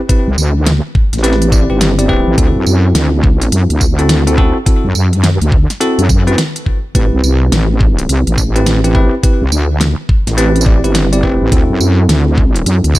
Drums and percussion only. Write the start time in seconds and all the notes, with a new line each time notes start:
0.09 kick, closed hi-hat
0.38 tambourine
0.66 snare, closed hi-hat
0.95 kick
1.13 snare, closed hi-hat
1.18 snare
1.24 snare, closed hi-hat
1.33 snare
1.42 closed hi-hat
1.52 kick, tambourine
1.81 snare, closed hi-hat
1.99 closed hi-hat
2.09 kick
2.38 kick, closed hi-hat
2.66 tambourine
2.95 snare, closed hi-hat
3.24 kick
3.42 closed hi-hat
3.52 closed hi-hat
3.70 closed hi-hat
3.81 kick, tambourine
3.99 closed hi-hat
4.09 snare, closed hi-hat
4.27 closed hi-hat
4.38 kick
4.66 kick, closed hi-hat
4.95 tambourine
5.13 closed hi-hat
5.24 snare, closed hi-hat
5.42 closed hi-hat
5.52 kick
5.70 snare, closed hi-hat
5.81 closed hi-hat
5.99 closed hi-hat
6.09 kick, tambourine
6.27 closed hi-hat
6.38 snare, closed hi-hat
6.56 closed hi-hat
6.66 kick
6.95 kick, closed hi-hat
7.24 tambourine
7.52 snare, closed hi-hat
7.81 kick
7.99 closed hi-hat
8.09 closed hi-hat
8.27 closed hi-hat
8.38 kick, tambourine
8.56 closed hi-hat
8.66 snare, closed hi-hat
8.84 closed hi-hat
8.95 kick
9.23 kick, closed hi-hat
9.52 tambourine
9.81 snare, closed hi-hat
10.09 kick
10.27 snare, closed hi-hat
10.38 closed hi-hat
10.56 closed hi-hat
10.61 tambourine
10.66 kick
10.84 closed hi-hat
10.95 snare, closed hi-hat
11.13 closed hi-hat
11.23 kick
11.52 kick, closed hi-hat
11.80 tambourine
12.09 snare, closed hi-hat
12.38 kick
12.56 closed hi-hat
12.66 closed hi-hat
12.84 closed hi-hat
12.95 kick, tambourine